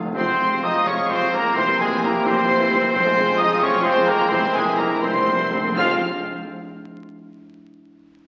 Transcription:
0.05 timpani F2
0.15 double bass section F1, tuba F1, cello section F2, viola section C3 F4, trombone section F3 G#3, cor anglais C4, french horn section C4 F4, violin section C5 C6, trumpet section C5, flute C6
0.28 cello section F2, viola section F3
0.39 double bass section F1, tuba F1, cello section F2, viola section G#3
0.51 cello section F2, viola section C3
0.62 double bass section F1, tuba F1, cello section F2, viola section F3, cor anglais D#4, violin section D#5 D#6, trumpet section D#5, flute D#6
0.74 cello section F2, viola section G#3
0.86 tuba F1, double bass section F1, cello section F2, viola section C3, cor anglais C#4, violin section C#5 C#6, trumpet section C#5, flute C#6
0.98 cello section F2, viola section F3
1.09 double bass section F1, tuba F1, cello section F2, viola section G#3, cor anglais C4, trumpet section C5, violin section C5 C6, flute C6
1.21 cello section F2, viola section C3
1.32 tuba F1, double bass section F1, cello section F2, viola section F3, cor anglais A#3, violin section A#4 A#5, trumpet section A#4, flute A#5
1.44 cello section F2, viola section G#3
1.55 double bass section F1, tuba F1, cello section F2, viola section E3 E4, trombone section E3 A#3, cor anglais C4, french horn section G4, violin section C5 C6, trumpet section C5, flute C6
1.67 cello section F2, viola section G3
1.79 tuba F1, double bass section F1, cello section F2, cor anglais G#3, viola section A#3, trumpet section G#4, violin section G#4 G#5, flute G#5
1.90 cello section F2, viola section E3
2.02 double bass section F1, tuba F1, cello section F2, viola section G3, cor anglais A#3, violin section A#4 A#5, trumpet section A#4, flute A#5
2.13 cello section F2, viola section A#3
2.24 tuba F1, double bass section F1, cello section F2, viola section E3, cor anglais C4, violin section C5 C6, trumpet section C5, flute C6
2.36 cello section F2, viola section G3
2.47 tuba F1, double bass section F1, cello section F2, viola section A#3
2.59 cello section F2, viola section E3
2.70 double bass section F1, tuba F1, cello section F2, viola section G3
2.82 cello section F2, viola section A#3
2.93 double bass section F1, tuba F1, timpani F2, cello section F2, viola section C3 F4, trombone section F3 G#3, cor anglais C4, french horn section C4 G#4, violin section C5 C6, trumpet section C5, flute C6
3.05 cello section F2, viola section F3
3.16 tuba F1, double bass section F1, cello section F2, viola section G#3
3.28 cello section F2, viola section C3
3.37 double bass section F1, tuba F1, cello section F2, viola section F3, cor anglais D#4, violin section D#5 D#6, flute D#6
3.41 trumpet section D#5
3.50 cello section F2, viola section G#3
3.61 tuba F1, double bass section F1, cello section F2, viola section C3, cor anglais C#4, trumpet section C#5, violin section C#5 C#6, flute C#6
3.74 cello section F2, viola section F3
3.82 tuba F1, double bass section F1, cello section F2, viola section G#3, cor anglais C4, violin section C5, flute C6
3.86 trumpet section C5, violin section C6
3.96 cello section F2, viola section C3
4.06 tuba F1, double bass section F1, cello section F2, viola section F3, cor anglais A#3, violin section A#4 A#5, trumpet section A#4, flute A#5
4.19 cello section F2, viola section G#3
4.28 tuba F1, double bass section F1, cello section F2, viola section E3 E4, cor anglais C4, trumpet section C5, flute C6
4.32 trombone section E3, french horn section A#4, violin section C5 C6
4.40 timpani F2, cello section F2
4.44 viola section G3
4.48 timpani F2
4.54 tuba F1, double bass section F1, cello section F2, timpani F2, cor anglais G#3, viola section A#3, violin section G#4 G#5, trumpet section G#4, flute G#5
4.65 timpani F2, cello section F2, viola section E3
4.72 timpani F2
4.78 double bass section F1, tuba F1, cello section F2, timpani F2, viola section G3, cor anglais A#3, trumpet section A#4, violin section A#4 A#5, flute A#5
4.89 timpani F2, cello section F2, viola section A#3
4.98 timpani F2
5.02 tuba F1, double bass section F1, cello section F2, viola section E3, trombone section G3, cor anglais C4, violin section C5 C6, trumpet section C5, flute C6
5.06 timpani F2
5.14 timpani F2, cello section F2, viola section G3
5.24 double bass section F1, tuba F1, timpani F2, viola section A#3
5.28 cello section F2
5.32 timpani F2
5.39 cello section F2, timpani F2, viola section E3
5.49 tuba F1, double bass section F1, timpani F2, cello section F2, viola section G3
5.59 timpani F2
5.64 cello section F2, timpani F2, viola section A#3
5.75 double bass section F1, tuba F1, cello section F2, timpani F2, trombone section F3 G#3, viola section G#3 F4, french horn section C4 C5, cor anglais F4, flute F5, violin section F5 F6, trumpet section F5

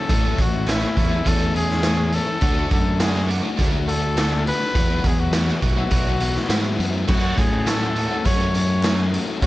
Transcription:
Already playing: overdriven electric guitar A3 C#4, analog synth pad A3 C#5 C#6, trumpet A4
0.07 fingered electric bass A1, overdriven electric guitar A2 E3 A3 C#4, analog synth pad E5, kick, closed hi-hat
0.12 overdriven electric guitar E4
0.24 overdriven electric guitar E3 A3 C#4 E4
0.38 fingered electric bass A1, trumpet F#4, kick, closed hi-hat
0.66 overdriven electric guitar A2 E3 A3 C#4 E4, snare, clap, closed hi-hat, tambourine
0.71 trumpet E4
0.81 overdriven electric guitar A3 C#4 E4, snare
0.97 fingered electric bass E2, overdriven electric guitar E3 A3 C#4, muted overdriven electric guitar stroke, kick, closed hi-hat
1.10 overdriven electric guitar A3 C#4 E4
1.25 fingered electric bass E2, overdriven electric guitar E3 A3 C#4, trumpet A4, kick, closed hi-hat
1.40 overdriven electric guitar A3 C#4 E4
1.54 overdriven electric guitar E3 A3 C#4 E4, trumpet G#4, muted overdriven electric guitar stroke, closed hi-hat
1.70 snare
1.83 overdriven electric guitar A2 E3 A3 C#4 E4, snare, clap, closed hi-hat, tambourine
1.99 overdriven electric guitar A3 C#4 E4, muted overdriven electric guitar stroke
2.12 overdriven electric guitar E3 A3 C#4 E4, trumpet A4, closed hi-hat
2.26 overdriven electric guitar A3 C#4 E4
2.41 fingered electric bass D2, overdriven electric guitar D3 A3 D4 F#4, analog synth pad D5 F#5, kick, closed hi-hat
2.55 overdriven electric guitar A3 D4 F#4
2.71 fingered electric bass F#2, trumpet A4, kick, closed hi-hat
2.99 overdriven electric guitar D3 A3 D4 F#4, trumpet G#4, snare, clap, closed hi-hat, tambourine
3.14 overdriven electric guitar A3 D4 F#4, snare
3.28 overdriven electric guitar A3 D4 F#4, muted overdriven electric guitar stroke, closed hi-hat
3.43 overdriven electric guitar A3 D4 F#4
3.57 fingered electric bass D2, overdriven electric guitar A3 D4 F#4, kick, closed hi-hat
3.71 overdriven electric guitar A3 D4 F#4
3.87 overdriven electric guitar D3 A3 D4 F#4, trumpet A4, muted overdriven electric guitar stroke, closed hi-hat
4.16 overdriven electric guitar D3 A3 D4 F#4, snare, clap, closed hi-hat, tambourine
4.32 overdriven electric guitar A3 D4 F#4, muted overdriven electric guitar stroke
4.46 overdriven electric guitar D3 A3 D4 F#4, trumpet B4, closed hi-hat
4.60 overdriven electric guitar A3 D4 F#4
4.73 fingered electric bass E2, overdriven electric guitar E3 F#3 B3 E4 F#4, analog synth pad B4 E5 E6, kick, closed hi-hat
4.89 overdriven electric guitar E3 F#3 B3 E4 F#4
5.04 fingered electric bass E2, trumpet G#4, kick, closed hi-hat
5.20 trumpet F#4
5.31 overdriven electric guitar E3 F#3 B3 E4 F#4, snare, clap, closed hi-hat, tambourine
5.47 overdriven electric guitar F#3 B3 F#4, snare
5.61 fingered electric bass B1, overdriven electric guitar E3 B3 E4 F#4, trumpet F#4, muted overdriven electric guitar stroke, kick, closed hi-hat
5.76 overdriven electric guitar F#3 B3 F#4
5.91 fingered electric bass B1, overdriven electric guitar E3 B3 E4 F#4, kick, closed hi-hat
6.06 overdriven electric guitar F#3 B3 F#4
6.19 overdriven electric guitar E3 F#3 B3 F#4, muted overdriven electric guitar stroke, clap, closed hi-hat
6.35 snare
6.48 fingered electric bass G#2, overdriven electric guitar E3 F#3 B3 E4 F#4, snare, clap, closed hi-hat, tambourine
6.63 overdriven electric guitar F#3 B3 F#4, muted overdriven electric guitar stroke
6.77 fingered electric bass F#2, overdriven electric guitar E3 F#3 B3 F#4, closed hi-hat
6.91 overdriven electric guitar F#3 B3 F#4
7.04 overdriven electric guitar F#3 A3 C#4 F#4
7.08 fingered electric bass F#2, trumpet F#4, analog synth pad C#5 F#5 C#6, kick, crash
7.13 analog synth pad A3
7.20 overdriven electric guitar A3 C#4 F#4
7.38 fingered electric bass A2, trumpet G#4, kick, closed hi-hat
7.66 overdriven electric guitar F#3 A3 C#4 F#4, trumpet A4, snare, clap, closed hi-hat, tambourine
7.80 overdriven electric guitar A3 C#4 F#4
7.94 overdriven electric guitar A3 C#4 F#4, muted overdriven electric guitar stroke, closed hi-hat
8.11 overdriven electric guitar A3 C#4 F#4
8.25 fingered electric bass F#2, overdriven electric guitar A3 C#4 F#4, trumpet C#5, kick, closed hi-hat
8.41 overdriven electric guitar A3 C#4 F#4
8.54 overdriven electric guitar F#3 A3 C#4 F#4, trumpet C#5, muted overdriven electric guitar stroke, closed hi-hat
8.83 overdriven electric guitar F#3 A3 C#4 F#4, snare, clap, closed hi-hat, tambourine
8.99 overdriven electric guitar A3 C#4 F#4, muted overdriven electric guitar stroke
9.13 overdriven electric guitar F#3 A3 C#4 F#4, closed hi-hat
9.28 overdriven electric guitar A3 C#4 F#4
9.40 fingered electric bass A1, overdriven electric guitar A2 E3 A3 C#4 E4, trumpet F#4, kick, closed hi-hat

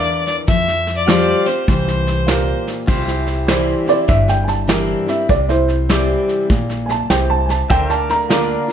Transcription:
Already playing: upright bass E2, steel-string acoustic guitar E3, pedal steel guitar D4 A#4 D5, grand piano A#4 D5 F5, fiddle D5
0.26 fiddle D5, snare
0.47 upright bass F2, steel-string acoustic guitar F3, fiddle E5, kick, snare
0.68 snare
0.87 snare
0.96 fiddle D5
1.06 steel-string acoustic guitar F3 G3 C4 G4, grand piano F4 G4 C5, pedal steel guitar G4 C5 F5, snare, hi-hat pedal
1.46 steel-string acoustic guitar C4 G4, fiddle C5, snare
1.68 upright bass C2, steel-string acoustic guitar E3, fiddle C5, kick, snare
1.88 snare
2.07 snare
2.27 steel-string acoustic guitar A#2, grand piano F4 G4 A#4, snare, hi-hat pedal
2.67 snare
2.87 upright bass C2, steel-string acoustic guitar C3, pedal steel guitar F4 G4 C5, kick, snare, crash
3.07 pedal steel guitar E4, snare
3.27 snare
3.47 steel-string acoustic guitar E3 G3 C4 E4, grand piano E4 G4 C5, snare, hi-hat pedal
3.86 steel-string acoustic guitar C4 E4, upright piano D5, snare
4.08 upright bass G1, steel-string acoustic guitar G2, upright piano E5, kick, snare
4.28 upright piano G5, snare
4.44 upright piano G#5, snare
4.48 upright piano A5
4.67 steel-string acoustic guitar E3 G3 C4 E4, grand piano E4 G4 A#4, snare, hi-hat pedal
5.07 steel-string acoustic guitar C4 E4, upright piano E5, snare
5.29 upright bass C2, steel-string acoustic guitar C3, upright piano D5, kick, snare
5.49 upright piano E4 C5, snare
5.68 snare
5.89 steel-string acoustic guitar E3 G3 C4 E4, grand piano E4 G4 D5, snare, hi-hat pedal
6.28 snare
6.50 upright bass A#1, steel-string acoustic guitar A#2, kick, snare
6.69 snare
6.86 upright piano G#5, snare
6.91 upright piano A5
7.09 upright bass C2, steel-string acoustic guitar C3, grand piano E4 G4 C5, upright piano G5, snare, hi-hat pedal
7.30 upright piano A5
7.46 upright piano G#5, snare
7.50 upright piano A5
7.70 upright bass D2, steel-string acoustic guitar D3, pedal steel guitar A#4 C5 E5, upright piano G5, kick, snare
7.90 pedal steel guitar F5, upright piano A5, snare
7.97 pedal steel guitar D5
8.09 upright piano A#5, snare
8.29 steel-string acoustic guitar D3 A#3 D4 F4, grand piano F4 A#4 D5, snare, hi-hat pedal
8.68 steel-string acoustic guitar F4

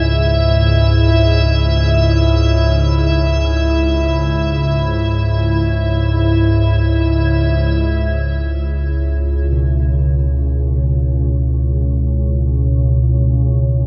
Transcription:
Already playing: synth drone C#2 G#2, singing bowl B2, ambient pad E4 E5
1.76 singing bowl E4
7.56 synth drone C#2
9.52 singing bowl B2

